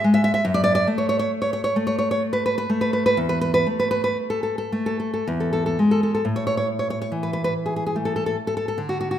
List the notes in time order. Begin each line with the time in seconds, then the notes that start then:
0.04 G#3
0.14 E5
0.24 E5
0.34 E5
0.45 F#2
0.54 D5
0.64 D5
0.75 D5
0.87 A3
0.98 C#5
1.09 C#5
1.19 C#5
1.42 C#5
1.53 C#5
1.64 C#5
1.76 A3
1.87 C#5
1.99 C#5
2.11 C#5
2.33 B4
2.46 B4
2.58 B4
2.70 A3
2.81 B4
2.93 B4
3.06 B4
3.17 E2
3.29 B4
3.41 B4
3.54 B4
3.67 A3
3.80 B4
3.91 B4
4.04 B4
4.30 A4
4.43 A4
4.58 A4
4.72 A3
4.86 A4
5.00 A4
5.14 A4
5.28 E2
5.40 A4
5.53 A4
5.66 A4
5.79 G#3
5.91 A4
6.03 A4
6.14 A4
6.25 A2
6.36 C#5
6.47 C#5
6.57 C#5
6.79 C#5
6.90 C#5
7.02 C#5
7.12 E3
7.23 B4
7.33 B4
7.44 B4
7.66 G#4
7.76 G#4
7.86 G#4
7.96 A3
8.05 A4
8.16 A4
8.26 A4
8.47 A4
8.57 A4
8.68 A4
8.78 D3
8.89 F#4
9.01 F#4
9.11 F#4